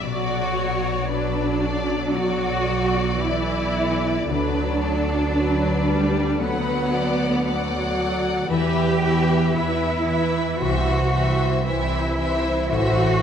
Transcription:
Already playing: F#4
0.02 B1 B2 F#3 F#4 D5
0.56 B3 C#5
1.10 F#3 D4 B4 D5
1.62 F#4 D5
2.15 F#3 F#4 D5
2.69 B3
3.22 E3 E4 D5
3.77 F#4
4.29 D2 D3 F#3 D4 B4
4.81 B3 A4
5.36 F#3 B4
5.87 G3 F#4
6.39 D3 F#3 B3 B4 F#5
6.92 B3 D5
7.45 F#3 B4 D5 F#5
7.97 F#4
8.50 E2 E3 G4 B4 E5
9.02 E3 E4 B4 E5
9.54 E2 E3 E4 B4 E5
10.07 E3 E4 B4 E5
10.60 C2 C3 E3 F#4 C5 E5
11.13 E3 C4 C5 E5
11.65 C2 E3 E4 C5 E5
12.18 E3 E4 C5 E5
12.70 A1 A2 E3 F#4 C5 E5

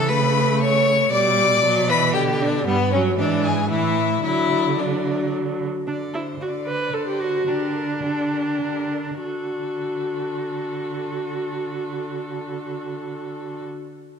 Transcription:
Already playing: C#3 E3 A4
0.08 A3 B4 B5
0.61 C#5 C#6
1.11 B2 G3 D5 D6
1.64 F#3
1.89 E3 B4 B5
2.13 D3 G4 G5
2.41 D4 D5
2.65 G2 G3 B3 B4
2.91 F#3 C#4 C#5
3.17 G#2 E3 D4 D5
3.43 G#4 G#5
3.70 A2 E3 E4 E5
4.24 D3 F#3 E4 E5
4.78 F#3 D4 D5
5.87 D3 D4 D5
6.14 E4 C5
6.40 D3 F#4 D5
6.67 B4 C5
6.93 D3 A4 C5 D5
7.08 G4
7.20 F#4 C5
7.47 D3 D4 G4 A#4
7.75 A#4
8.03 D3 G4 A4
8.32 G4 A#4
8.61 D3 G4 A#4
8.93 A#4
9.22 D3 F#4 A4

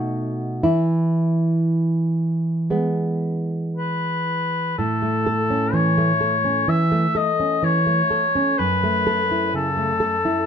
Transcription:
Already playing: B2 A3 D#4 F#4
0.63 E3 E4
2.70 G#3 B3
3.76 B4
4.78 A2 A4
5.02 A3
5.26 A4
5.50 C#4
5.73 E3 C#5
5.98 A3
6.21 A4
6.44 C#4
6.68 E3 E5
6.92 A3
7.15 A4 D#5
7.40 C#4
7.63 E3 C#5
7.87 A3
8.11 A4
8.35 C#4
8.58 F#2 B4
8.83 A3
9.07 A4
9.31 E4
9.54 C#3 A4
9.77 A3
10.00 A4
10.25 E4

